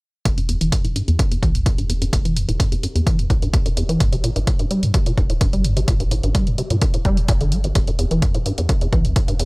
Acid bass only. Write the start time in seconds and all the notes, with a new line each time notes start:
0.25 E2
0.38 F#2
0.49 E2
0.61 E3
0.72 E2
0.85 A2
0.96 G2
1.08 E2
1.19 F#2
1.31 E2
1.43 E3
1.55 E2
1.66 A2
1.78 G2
1.90 E2
2.02 F#2
2.13 E2
2.25 E3
2.36 E2
2.49 A2
2.60 G2
2.72 E2
2.83 F#2
2.95 E2
3.07 E3
3.19 E2
3.30 A2
3.42 G2
3.54 E2
3.66 F#2
3.77 E2
3.89 E3
4.00 G2
4.13 C3
4.24 A#2
4.36 G2
4.47 A2
4.59 G2
4.71 G3
4.83 G2
4.94 C3
5.06 A#2
5.18 G2
5.30 A2
5.41 G2
5.53 G3
5.65 G2
5.77 C3
5.88 A#2
6.00 G2
6.11 A2
6.24 G2
6.35 G3
6.47 G2
6.58 C3
6.71 A#2
6.82 G2
6.94 A2
7.05 G3
7.17 G2
7.29 A#2
7.41 D3
7.52 G3
7.64 G1
7.76 E2
7.88 F#2
7.99 E2
8.11 E3
8.22 E2
8.35 A2
8.46 G2
8.58 E2
8.69 F#2
8.81 E2
8.93 E3
9.05 E2
9.16 A2
9.28 G2
9.40 E2